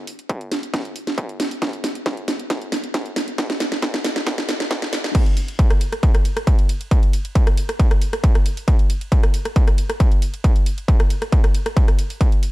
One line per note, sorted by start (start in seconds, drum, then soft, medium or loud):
0.07 open hi-hat loud
0.19 closed hi-hat medium
0.29 kick loud
0.29 closed hi-hat medium
0.41 closed hi-hat medium
0.52 snare medium
0.52 open hi-hat loud
0.63 closed hi-hat medium
0.74 kick loud
0.74 snare medium
0.74 closed hi-hat loud
0.85 closed hi-hat medium
0.96 open hi-hat loud
1.07 snare medium
1.07 closed hi-hat medium
1.18 kick loud
1.18 closed hi-hat medium
1.29 closed hi-hat medium
1.40 snare medium
1.40 open hi-hat loud
1.51 open hi-hat medium
1.62 kick loud
1.62 snare medium
1.62 closed hi-hat medium
1.73 closed hi-hat medium
1.84 snare medium
1.84 open hi-hat loud
1.95 closed hi-hat medium
2.06 kick loud
2.06 snare medium
2.06 closed hi-hat medium
2.17 closed hi-hat medium
2.28 snare medium
2.28 open hi-hat loud
2.40 closed hi-hat medium
2.50 kick loud
2.50 snare medium
2.50 closed hi-hat loud
2.62 closed hi-hat medium
2.72 snare medium
2.72 open hi-hat loud
2.84 closed hi-hat medium
2.94 kick loud
2.94 snare medium
2.94 closed hi-hat loud
3.06 closed hi-hat medium
3.16 snare medium
3.16 open hi-hat loud
3.28 closed hi-hat medium
3.38 kick loud
3.38 snare medium
3.38 closed hi-hat medium
3.50 snare medium
3.50 closed hi-hat medium
3.60 snare loud
3.60 open hi-hat loud
3.72 snare medium
3.72 closed hi-hat medium
3.82 kick loud
3.82 snare loud
3.82 closed hi-hat medium
3.94 snare medium
3.94 closed hi-hat medium
4.04 snare loud
4.04 open hi-hat loud
4.16 snare medium
4.16 closed hi-hat medium
4.27 kick loud
4.27 snare loud
4.27 closed hi-hat medium
4.38 snare medium
4.38 closed hi-hat medium
4.49 snare loud
4.49 open hi-hat loud
4.60 snare medium
4.60 closed hi-hat medium
4.71 kick loud
4.71 snare loud
4.71 closed hi-hat medium
4.82 snare loud
4.82 closed hi-hat medium
4.93 snare loud
4.93 open hi-hat loud
5.04 snare loud
5.04 open hi-hat medium
5.15 kick loud
5.15 closed hi-hat medium
5.15 crash loud
5.15 ride medium
5.26 closed hi-hat medium
5.26 ride medium
5.37 open hi-hat loud
5.37 ride medium
5.48 closed hi-hat medium
5.48 ride medium
5.59 kick loud
5.59 closed hi-hat loud
5.59 ride medium
5.70 cross-stick medium
5.70 closed hi-hat medium
5.70 ride medium
5.81 open hi-hat loud
5.81 ride medium
5.92 cross-stick medium
5.92 closed hi-hat medium
5.92 ride medium
6.03 kick loud
6.03 closed hi-hat loud
6.03 ride medium
6.15 cross-stick medium
6.15 closed hi-hat medium
6.15 ride medium
6.25 open hi-hat loud
6.25 ride medium
6.37 cross-stick medium
6.37 closed hi-hat medium
6.37 ride medium
6.47 kick loud
6.47 closed hi-hat loud
6.47 ride medium
6.59 closed hi-hat medium
6.59 ride medium
6.69 open hi-hat loud
6.69 ride medium
6.81 closed hi-hat medium
6.81 ride medium
6.91 kick loud
6.91 closed hi-hat loud
6.91 ride medium
7.03 closed hi-hat medium
7.03 ride medium
7.13 open hi-hat loud
7.13 ride medium
7.25 closed hi-hat medium
7.25 ride medium
7.35 kick loud
7.35 closed hi-hat loud
7.35 ride medium
7.47 cross-stick medium
7.47 closed hi-hat medium
7.47 ride medium
7.57 open hi-hat loud
7.57 ride medium
7.69 cross-stick medium
7.69 closed hi-hat medium
7.69 ride medium
7.80 kick loud
7.80 closed hi-hat loud
7.80 ride medium
7.91 cross-stick medium
7.91 closed hi-hat medium
7.91 ride medium
8.02 open hi-hat loud
8.02 ride medium
8.13 cross-stick medium
8.13 closed hi-hat medium
8.13 ride medium
8.24 kick loud
8.24 closed hi-hat loud
8.24 ride medium
8.35 cross-stick medium
8.35 closed hi-hat medium
8.35 ride medium
8.46 open hi-hat loud
8.46 ride medium
8.57 open hi-hat medium
8.57 ride medium
8.68 kick loud
8.68 closed hi-hat loud
8.68 ride medium
8.79 closed hi-hat medium
8.79 ride medium
8.90 open hi-hat loud
8.90 ride medium
9.01 closed hi-hat medium
9.01 ride medium
9.12 kick loud
9.12 closed hi-hat medium
9.12 ride medium
9.23 cross-stick medium
9.23 closed hi-hat medium
9.23 ride medium
9.34 open hi-hat loud
9.34 ride medium
9.45 cross-stick medium
9.45 closed hi-hat medium
9.45 ride medium
9.56 kick loud
9.56 closed hi-hat loud
9.56 ride medium
9.68 cross-stick medium
9.68 closed hi-hat medium
9.68 ride medium
9.78 open hi-hat loud
9.78 ride medium
9.90 cross-stick medium
9.90 closed hi-hat medium
9.90 ride medium
10.00 kick loud
10.00 closed hi-hat loud
10.00 ride medium
10.12 closed hi-hat medium
10.12 ride medium
10.22 open hi-hat loud
10.22 ride medium
10.34 closed hi-hat medium
10.34 ride medium
10.44 kick loud
10.44 closed hi-hat medium
10.44 ride medium
10.56 closed hi-hat medium
10.56 ride medium
10.66 open hi-hat loud
10.66 ride medium
10.78 closed hi-hat medium
10.78 ride medium
10.88 kick loud
10.88 closed hi-hat medium
10.88 ride medium
11.00 cross-stick medium
11.00 closed hi-hat medium
11.00 ride medium
11.10 open hi-hat loud
11.10 ride medium
11.22 cross-stick medium
11.22 closed hi-hat medium
11.22 ride medium
11.32 kick loud
11.32 closed hi-hat medium
11.32 ride medium
11.44 cross-stick medium
11.44 closed hi-hat medium
11.44 ride medium
11.54 open hi-hat loud
11.54 ride medium
11.66 cross-stick medium
11.66 closed hi-hat medium
11.66 ride medium
11.77 kick loud
11.77 closed hi-hat medium
11.77 ride medium
11.88 cross-stick medium
11.88 closed hi-hat medium
11.88 ride medium
11.99 open hi-hat loud
11.99 ride medium
12.10 open hi-hat medium
12.10 ride medium
12.21 kick loud
12.21 closed hi-hat medium
12.21 ride medium
12.32 closed hi-hat soft
12.32 ride medium
12.43 open hi-hat loud
12.43 ride medium